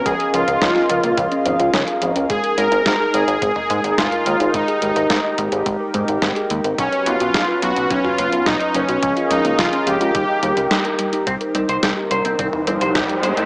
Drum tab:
HH |xxxxx-xxxxxxxxxx|xxxxx-xxx-xxxxxx|xxxxx-xxx-xxxxxx|xxxxx-xxx-xxxxxx|
SD |----oo------o---|----o-------o---|----o-------o---|----o-------o---|
T2 |----------o-----|---------o--o---|----------o-----|---------o--o---|
BD |o---o---o---o---|o---o---o---o---|o---o---o---o---|o---o---o---o---|

HH |xxxxxxxxx-xxxxxx|xxxxx-xxx-xxxxxx|
SD |----o-------o---|----o-------o---|
T2 |----------o-----|---------o--o---|
BD |o---o---o-------|o---o---o---o---|